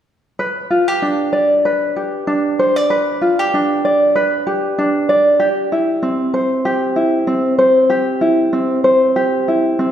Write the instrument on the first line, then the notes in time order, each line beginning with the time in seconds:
ukulele
0.39 B4
0.70 F4
0.88 G4
1.02 D4
1.33 D5
1.65 B4
1.96 G4
2.27 D4
2.59 C5
2.76 D5
2.90 B4
3.21 F4
3.39 G4
3.54 D4
3.85 D5
4.16 B4
4.47 G4
4.78 D4
5.09 D5
5.40 G4
5.72 E4
6.03 C4
6.34 C5
6.65 G4
6.96 E4
7.27 C4
7.58 C5
7.90 G4
8.21 E4
8.53 C4
8.84 C5
9.16 G4
9.48 E4
9.79 C4